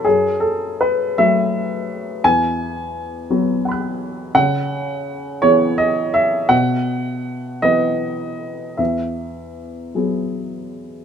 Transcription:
<<
  \new Staff \with { instrumentName = "Upright piano" } { \time 6/8 \key e \major \tempo 4. = 55 << { r2. | r2 <fis'' b'' fis'''>4 | r2. | r2. |
r2. | } \\ { gis'8 a'8 b'8 e''4. | gis''2. | fis''4. cis''8 dis''8 e''8 | fis''4. dis''4. |
e''4. r4. | } >> }
  \new Staff \with { instrumentName = "Upright piano" } { \clef bass \time 6/8 \key e \major fis,4. <fis a fis'>4. | e,4. <fis b fis'>4. | cis4. <e b gis'>4. | b,4. <e b b'>4. |
e,4. <fis b gis'>4. | }
>>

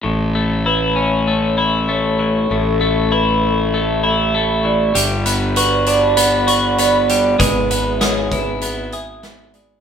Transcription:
<<
  \new Staff \with { instrumentName = "Ambient pad" } { \time 4/4 \key a \major \tempo 4 = 98 << { cis'''1~ | cis'''1 | b''1~ | b''1 | } \\ { <a' e''>1~ | <a' e''>1 | <d'' fis''>1 | <gis' b' e''>1 | } >> }
  \new Staff \with { instrumentName = "Vibraphone" } { \time 4/4 \key a \major r4 b'8 cis''4 r8 cis''4 | a'4 b'8 a'4 e''4 d''8 | r4 b'8 d''4 r8 d''4 | b'4 cis''8 b'4 e''4 d''8 | }
  \new Staff \with { instrumentName = "Clean electric guitar" } { \time 4/4 \key a \major a,8 a8 e'8 cis'8 a8 e'8 a8 e8 | a,8 a8 e'4 a8 e'8 a8 e8 | g8 b8 fis'8 d'8 b8 fis'8 b8 g8 | gis8 b8 gis'8 e'8 b8 gis'8 b8 gis8 | }
  \new Staff \with { instrumentName = "Fingered electric bass" } { \clef bass \time 4/4 \key a \major a,,1 | a,,1 | g,,1 | gis,,1 | }
  \new DrumStaff \with { instrumentName = "Drums" } \drummode { \time 4/4 r4 r4 r4 r4 | r4 r4 r4 r4 | hh8 hh8 hh8 hh8 hh8 hh8 hh8 hh8 | <hh bd>8 hh8 <hh sn>8 <hh bd>8 hh8 hh8 <hh sn>8 hh8 | }
>>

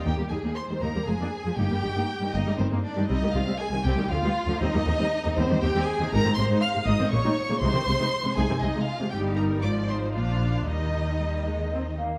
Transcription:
<<
  \new Staff \with { instrumentName = "Violin section" } { \time 3/4 \key ees \major \tempo 4 = 118 g''8 aes''8 c'''8 bes''8 aes''4 | g''4. ees''8 c''8 d''8 | ees''8 f''8 aes''8 g''8 f''4 | ees''4. c''8 g''8 aes''8 |
bes''8 c'''8 f'''8 ees'''8 des'''4 | c'''4. aes''8 ees''8 f''8 | g''8 bes''8 d'''8 c'''8 f''4 | ees''2~ ees''8 r8 | }
  \new Staff \with { instrumentName = "Flute" } { \time 3/4 \key ees \major r2. | r2. | r2. | r2. |
r2. | r2. | r2. | r2 ees''8 f''8 | }
  \new Staff \with { instrumentName = "Violin section" } { \time 3/4 \key ees \major g'8 aes'8 c''8 bes'8 aes'4 | g'4. ees'8 c'8 d'8 | ees'8 f'8 aes'8 g'8 f'4 | ees'4. c'8 g'8 aes'8 |
bes'8 c''8 f''8 ees''8 des''4 | c''4. aes'8 ees'8 f'8 | g'8 bes'8 d''8 c''8 f'4 | ees'2~ ees'8 r8 | }
  \new Staff \with { instrumentName = "Viola section" } { \clef bass \time 3/4 \key ees \major << { ees'16 bes16 g16 ees'16 r16 g16 ees'16 bes16 aes16 d'16 r16 aes16 | ees'16 bes16 g16 ees'16 r16 g16 ees'16 bes16 g16 ees'16 r16 g16 | c'16 g16 ees16 c'16 r16 ees16 c'16 g16 f16 b16 r16 f16 | c'16 g16 ees16 c'16 r16 ees16 c'16 g16 ees16 c'16 r16 ees16 |
ees'16 c'16 aes16 ees'16 r16 aes16 ees'16 c'16 bes16 ees'16 r16 bes16 | ees'16 c'16 aes16 ees'16 r16 aes16 ees'16 c'16 aes16 ees'16 r16 aes16 | ees'4 f'8 ees'8 d'4 | ees'4 g8 aes8 c'8 bes8 | } \\ { bes16 g16 ees16 bes16 r16 ees16 bes16 g16 f16 bes16 r16 f16 | bes16 g16 ees16 bes16 r16 ees16 bes16 g16 ees16 bes16 r16 ees16 | g16 ees16 c16 g16 r16 c16 g16 ees16 d16 g16 r16 d16 | g16 ees16 c16 g16 r16 c16 g16 ees16 c16 g16 r16 c16 |
aes16 ees16 c16 aes16 r16 c16 aes16 ees16 des16 g16 r16 des16 | aes16 ees16 c16 aes16 r16 c16 aes16 ees16 c16 aes16 r16 c16 | g4 f4 f4 | g4 r2 | } >> }
  \new Staff \with { instrumentName = "Cello section" } { \clef bass \time 3/4 \key ees \major ees,16 ees,16 ees,16 ees,16 r16 ees,16 ees,16 ees,16 f,16 f,16 r16 f,16 | g,16 g,16 g,16 g,16 r16 g,16 g,16 g,16 g,16 g,16 r16 g,16 | c,16 c,16 c,16 c,16 r16 c,16 c,16 c,16 d,16 d,16 r16 d,16 | ees,16 ees,16 ees,16 ees,16 r16 ees,16 ees,16 ees,16 ees,16 ees,16 r16 ees,16 |
aes,16 aes,16 aes,16 aes,16 r16 aes,16 aes,16 aes,16 bes,16 bes,16 r16 bes,16 | c16 c16 c16 c16 r16 c16 c16 c16 c16 c16 r16 c16 | g,4 aes,4 bes,4 | ees2~ ees8 r8 | }
  \new Staff \with { instrumentName = "Double bass section" } { \clef bass \time 3/4 \key ees \major ees,16 r16 ees,16 r8. ees,16 r16 f,,16 r8. | g,,16 r16 g,,16 r8. g,,16 r16 g,,16 r8. | c,16 r16 c,16 r8. c,16 r16 d,16 r8. | ees,16 r16 ees,16 r8. ees,16 r16 ees,16 r8. |
aes,,16 r16 aes,,16 r8. aes,,16 r16 bes,,16 r8. | c,16 r16 c,16 r8. c,16 r16 c,16 r8. | g,,4 aes,,4 bes,,4 | ees,2~ ees,8 r8 | }
>>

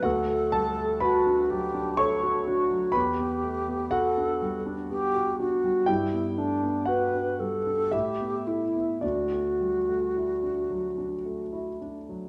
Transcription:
<<
  \new Staff \with { instrumentName = "Alto flute" } { \time 3/4 \key d \major \tempo 4 = 61 a'4 fis'8 g'8 a'8 fis'8 | g'4 a'8 r8 g'8 fis'8 | e'8 d'8 b'8 a'8 g'8 e'8 | fis'2~ fis'8 r8 | }
  \new Staff \with { instrumentName = "Grand piano" } { \time 3/4 \key d \major <fis' fis''>8 <a' a''>8 <b' b''>4 <cis'' cis'''>4 | <b' b''>4 <fis' fis''>2 | <g' g''>4 <fis' fis''>4 <e' e''>4 | <d' d''>2~ <d' d''>8 r8 | }
  \new Staff \with { instrumentName = "Grand piano" } { \time 3/4 \key d \major d,16 a16 g16 a16 fis'16 d'16 fis16 d'16 a16 fis'16 d'16 fis16 | e,16 b16 a16 b8 d'16 g16 d'16 b16 fis'16 d'16 g16 | g,16 b16 a16 b8 d'16 g16 d'16 a,16 b16 a16 b16 | d,16 a16 g16 a16 e'16 d'16 fis16 d'16 a16 e'16 d'16 fis16 | }
>>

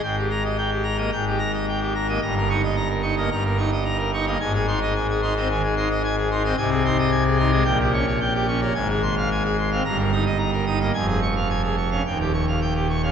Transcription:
<<
  \new Staff \with { instrumentName = "Pipe organ" } { \time 4/4 \key ees \mixolydian \tempo 4 = 110 g''16 g'16 bes''16 ees''16 g''16 g'16 bes''16 ees''16 g''16 g'16 bes''16 ees''16 g''16 g'16 bes''16 ees''16 | bes''16 bes'16 des'''16 ees''16 bes''16 bes'16 des'''16 ees''16 bes''16 bes'16 des'''16 ees''16 bes''16 bes'16 des'''16 ees''16 | aes''16 aes'16 c'''16 ees''16 aes''16 aes'16 c'''16 ees''16 aes''16 aes'16 c'''16 ees''16 aes''16 aes'16 c'''16 ees''16 | aes''16 aes'16 c'''16 ees''16 aes''16 aes'16 c'''16 ees''16 g''16 g'16 des'''16 des''16 g''16 g'16 des'''16 des''16 |
aes''16 aes'16 c'''16 f''16 aes''16 aes'16 c'''16 f''16 bes''16 bes'16 ees'''16 ees''16 bes''16 bes'16 ees'''16 ees''16 | aes''16 aes'16 des'''16 f''16 aes''16 aes'16 des'''16 f''16 g''16 g'16 des'''16 f''16 g''16 g'16 des'''16 f''16 | }
  \new Staff \with { instrumentName = "Pipe organ" } { \time 4/4 \key ees \mixolydian << { aes,4.~ aes,16 bes16 aes,4.~ aes,16 bes16 | g,8 ees'16 r8. ees'16 bes16 g,8 ees'16 r8. ees'16 bes16 | aes,8 ees'16 r8. ees'16 c'16 ees16 r16 ees'16 r8. ees'16 c'16 | c8 ees'16 r8. ees'16 aes16 bes,8 des'16 r8. des'16 bes16 |
aes,4.~ aes,16 c'16 g,8 ees'16 r8. ees'16 bes16 | f,4.~ f,16 des'16 ees,4.~ ees,16 des'16 | } \\ { aes,,2 aes,,2 | g,,2 g,,2 | aes,,1 | c,2 bes,,2 |
aes,,2 g,,2 | f,,2 ees,,2 | } >> }
>>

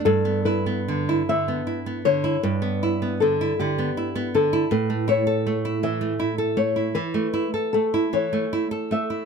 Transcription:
<<
  \new Staff \with { instrumentName = "Nylon-string guitar" } { \time 12/8 \key e \dorian \tempo 4. = 52 a'8 b'4 e''4 cis''8 b'4 a'8 g'4 a'8 | b'8 cis''4 e''4 cis''8 b'4 a'8 cis''4 e''8 | }
  \new Staff \with { instrumentName = "Nylon-string guitar" } { \time 12/8 \key e \dorian g,16 b16 e'16 b16 d16 e'16 d16 b16 e'16 b16 d16 e'16 g,16 b16 e'16 b16 d16 e'16 d16 b16 e'16 b16 d16 e'16 | a,16 a16 e'16 a'16 a16 e'16 e16 a16 e'16 a'16 a16 e'16 e16 a16 e'16 a'16 a16 e'16 e16 a16 e'16 a'16 a16 e'16 | }
>>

